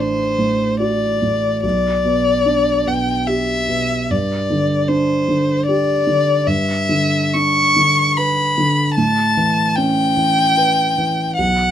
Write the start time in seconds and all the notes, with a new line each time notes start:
Already playing: A1 A2 D4
0.00 C5
0.38 A2
0.80 F#4 D5
1.22 A2
1.63 B1 D5
2.05 B2
2.45 D4
2.86 B2 G5
3.27 G4 E5
3.68 B2
4.10 G2 D5
4.50 D3
4.88 D4 C5
5.28 D3
5.66 G4 D5
6.07 D3
6.47 G2 E5
6.89 D3
7.34 D4 C#6
7.76 D3
8.17 B4 B5
8.58 D3
8.96 A2 A5
9.37 E3
9.76 C#4 G5
10.17 E3
10.57 B4
10.98 E3
11.37 B1 F#5